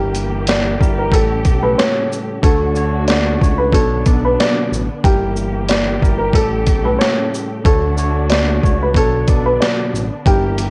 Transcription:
0.00 0.76 G1 loud
0.00 0.73 G2 loud
0.00 1.12 E3 medium
0.00 0.73 G3 medium
0.00 1.12 A#3 medium
0.00 0.74 E4 medium
0.00 0.44 G4 loud
0.00 2.41 G4 medium
0.00 0.74 A#4 loud
0.15 closed hi-hat medium
0.15 shaker medium
0.47 0.96 D5 medium
0.47 snare loud
0.47 closed hi-hat medium
0.79 1.10 G1 medium
0.79 1.12 G2 medium
0.79 1.11 G3 medium
0.79 1.13 E4 medium
0.79 1.13 A#4 loud
0.79 kick loud
0.79 shaker medium
0.98 1.11 A#4 medium
1.11 1.47 A1 loud
1.11 1.42 A2 medium
1.11 2.42 C#3 medium
1.11 1.43 G3 medium
1.11 2.42 A3 medium
1.11 1.43 C#4 medium
1.11 1.61 A4 loud
1.11 1.43 A4 loud
1.11 kick medium
1.11 closed hi-hat loud
1.45 1.75 B1 medium
1.45 kick medium
1.45 closed hi-hat medium
1.45 shaker medium
1.61 2.36 A2 medium
1.61 2.37 G3 medium
1.61 2.37 C#4 medium
1.61 2.37 A4 loud
1.61 1.76 B4 medium
1.78 2.08 C#5 medium
1.78 snare loud
1.78 closed hi-hat medium
2.12 shaker medium
2.42 3.37 D2 loud
2.42 2.73 D3 medium
2.42 2.73 A3 medium
2.42 3.72 A3 medium
2.42 3.71 D4 medium
2.42 3.72 F#4 medium
2.42 2.74 F#4 medium
2.42 3.04 A4 medium
2.42 2.74 C#5 loud
2.42 kick loud
2.42 closed hi-hat medium
2.75 3.36 D3 medium
2.75 3.36 A3 medium
2.75 3.37 F#4 medium
2.75 3.37 C#5 loud
2.75 shaker medium
3.08 3.56 D5 medium
3.08 snare loud
3.08 closed hi-hat medium
3.41 3.71 C#2 loud
3.41 3.74 A3 medium
3.41 3.73 D4 medium
3.41 3.74 F#4 medium
3.41 3.73 C#5 loud
3.41 kick loud
3.41 shaker medium
3.58 3.71 B4 medium
3.72 4.03 B1 loud
3.72 4.03 B2 medium
3.72 5.02 D3 medium
3.72 4.04 F#3 medium
3.72 5.02 B3 medium
3.72 5.02 D4 medium
3.72 4.04 D4 medium
3.72 4.21 A4 medium
3.72 4.04 C#5 loud
3.72 kick medium
3.72 closed hi-hat loud
4.05 4.36 B1 loud
4.05 4.82 B2 medium
4.05 4.82 F#3 medium
4.05 4.83 D4 medium
4.05 4.83 D5 loud
4.05 kick medium
4.05 closed hi-hat medium
4.05 shaker medium
4.25 4.38 B4 medium
4.40 4.69 D5 medium
4.40 snare loud
4.40 closed hi-hat medium
4.71 4.88 A1 medium
4.71 shaker medium
5.03 5.98 G1 loud
5.03 5.95 G2 loud
5.03 6.34 E3 medium
5.03 5.95 G3 medium
5.03 6.34 A#3 medium
5.03 5.95 E4 medium
5.03 5.65 G4 loud
5.03 7.63 G4 medium
5.03 5.96 A#4 loud
5.03 kick loud
5.03 closed hi-hat medium
5.36 shaker medium
5.69 6.17 D5 medium
5.69 snare loud
5.69 closed hi-hat medium
6.01 6.32 G1 medium
6.01 6.34 G2 loud
6.01 6.33 G3 medium
6.01 6.35 E4 medium
6.01 6.35 A#4 medium
6.01 kick loud
6.01 shaker medium
6.18 6.32 A#4 medium
6.33 6.69 A1 loud
6.33 6.64 A2 medium
6.33 7.64 C#3 medium
6.33 6.64 G3 medium
6.33 7.63 A3 medium
6.33 6.65 C#4 medium
6.33 6.82 A4 loud
6.33 6.65 A4 loud
6.33 kick medium
6.33 closed hi-hat loud
6.67 6.97 B1 medium
6.67 kick loud
6.67 closed hi-hat medium
6.67 shaker medium
6.83 7.58 A2 loud
6.83 7.58 G3 medium
6.83 7.59 C#4 medium
6.83 7.59 A4 loud
6.83 6.98 B4 medium
6.98 7.28 C#5 medium
6.98 snare loud
6.98 closed hi-hat medium
7.34 shaker medium
7.64 8.59 D2 loud
7.64 7.95 D3 loud
7.64 7.95 A3 medium
7.64 8.95 A3 medium
7.64 8.93 D4 medium
7.64 7.95 F#4 medium
7.64 8.95 F#4 medium
7.64 8.26 A4 loud
7.64 7.96 C#5 loud
7.64 kick loud
7.64 closed hi-hat medium
7.97 8.58 D3 medium
7.97 8.58 A3 medium
7.97 8.59 F#4 medium
7.97 8.59 C#5 loud
7.97 shaker medium
8.30 8.78 D5 medium
8.30 snare loud
8.30 closed hi-hat medium
8.63 8.93 C#2 medium
8.63 8.96 A3 medium
8.63 8.95 D4 medium
8.63 8.96 F#4 medium
8.63 8.95 C#5 loud
8.63 kick loud
8.63 shaker medium
8.82 8.95 B4 medium
8.94 9.25 B1 loud
8.94 9.25 B2 medium
8.94 10.24 D3 medium
8.94 9.25 F#3 medium
8.94 10.24 B3 medium
8.94 10.24 D4 medium
8.94 9.26 D4 medium
8.94 9.44 A4 loud
8.94 9.26 C#5 loud
8.94 kick medium
8.94 closed hi-hat loud
9.27 9.58 B1 loud
9.27 10.04 B2 medium
9.27 10.04 F#3 medium
9.27 10.04 D4 medium
9.27 10.05 D5 loud
9.27 kick medium
9.27 closed hi-hat medium
9.27 shaker medium
9.46 9.59 B4 medium
9.60 9.90 D5 medium
9.60 snare loud
9.60 closed hi-hat medium
9.93 10.10 A1 medium
9.93 shaker medium
10.25 10.70 G1 loud
10.25 10.70 G2 loud
10.25 10.70 E3 medium
10.25 10.70 G3 medium
10.25 10.70 A#3 medium
10.25 10.70 E4 medium
10.25 10.70 G4 loud
10.25 10.70 A#4 loud
10.25 kick loud
10.25 closed hi-hat medium
10.58 closed hi-hat medium
10.58 shaker medium

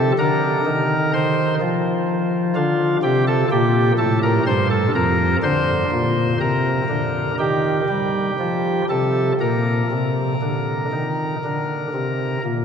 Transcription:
0.00 0.12 C3 medium
0.00 0.12 A4 loud
0.18 0.59 D3 medium
0.18 1.12 A#4 loud
0.66 1.59 D#3 medium
1.14 1.54 C5 loud
1.61 2.53 F3 medium
2.55 2.96 D3 medium
2.55 2.96 F4 loud
3.03 3.44 C3 medium
3.03 3.24 G4 loud
3.27 3.48 A4 loud
3.51 3.92 A#2 medium
3.51 3.92 G4 loud
3.98 4.39 A2 medium
3.98 4.19 A4 medium
4.23 4.43 A#4 loud
4.46 4.87 G2 medium
4.46 4.67 C5 loud
4.70 4.91 A4 loud
4.95 5.36 F2 medium
4.95 5.36 A#4 loud
5.43 5.84 D3 medium
5.43 6.38 C5 loud
5.92 6.33 A#2 medium
6.40 6.82 C3 medium
6.40 7.35 A#4 medium
6.89 7.31 D3 medium
7.39 7.81 D#3 medium
7.39 8.85 G4 medium
7.89 8.31 G3 medium
8.39 8.81 F3 medium
8.90 9.32 C3 medium
8.90 9.32 A4 medium
9.41 9.83 A#2 medium
9.41 12.42 A#4 medium
9.91 10.34 C3 medium
10.42 10.85 D3 medium
10.92 11.35 D#3 medium
11.44 11.87 D3 medium
11.94 12.37 C3 medium
12.45 12.65 A#2 medium

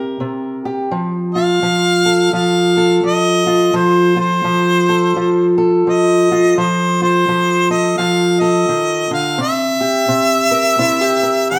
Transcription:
0.00 0.19 C3 medium
0.00 0.63 G4 medium
0.00 0.88 A#4 medium
0.20 0.88 C3 medium
0.65 0.89 G4 medium
0.91 1.62 F3 medium
1.34 2.33 F4 medium
1.34 2.30 F5 loud
1.62 2.33 F3 medium
2.05 2.77 A4 medium
2.33 3.03 F3 medium
2.33 3.46 F4 medium
2.33 3.01 F5 medium
2.77 4.89 A4 medium
3.03 3.73 F3 medium
3.03 3.78 D#5 loud
3.47 4.16 F4 medium
3.73 4.44 F3 medium
3.73 4.18 C5 medium
4.16 5.16 F4 medium
4.16 5.57 C5 medium
4.44 5.16 F3 medium
4.89 5.57 A4 medium
5.16 5.86 F3 medium
5.16 6.30 F4 medium
5.58 7.69 A4 medium
5.87 6.55 F3 medium
5.87 6.61 D#5 medium
6.32 6.56 F4 medium
6.58 7.27 F3 medium
6.58 7.01 C5 medium
7.02 7.98 F4 medium
7.02 7.68 C5 loud
7.28 7.97 F3 medium
7.70 8.40 A4 medium
7.70 7.97 D#5 medium
7.98 8.68 F3 medium
7.98 9.37 F4 medium
7.98 8.42 F5 medium
8.40 9.40 A4 medium
8.40 9.12 D#5 medium
8.69 9.10 D#3 medium
9.11 9.40 D3 medium
9.11 9.39 F5 medium
9.38 10.07 C3 medium
9.38 11.48 E5 loud
9.81 10.79 G4 medium
10.08 10.78 C3 medium
10.51 11.22 A#4 medium
10.79 11.59 C3 medium
10.79 11.01 E4 medium
11.01 11.59 G4 soft
11.23 11.59 A#4 medium
11.50 11.59 E3 medium
11.50 11.59 G5 loud

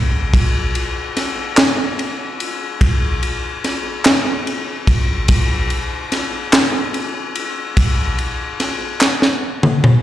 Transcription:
0.34 kick loud
0.34 ride medium
0.75 ride soft
1.17 snare soft
1.17 ride medium
1.57 snare loud
1.57 clap medium
1.57 ride medium
1.99 ride soft
2.40 ride medium
2.81 kick loud
2.81 ride medium
3.23 ride soft
3.64 snare soft
3.64 ride medium
4.05 snare loud
4.05 clap medium
4.05 ride medium
4.47 ride soft
4.87 kick medium
4.87 ride medium
5.28 kick loud
5.28 ride medium
5.70 ride soft
6.12 snare soft
6.12 ride medium
6.53 snare loud
6.53 clap medium
6.53 ride medium
6.94 ride soft
7.35 ride medium
7.77 kick loud
7.77 ride medium
8.19 ride soft
8.60 snare soft
8.60 ride medium
9.01 snare medium
9.01 clap medium
9.22 snare medium
9.63 mid tom medium
9.84 mid tom medium

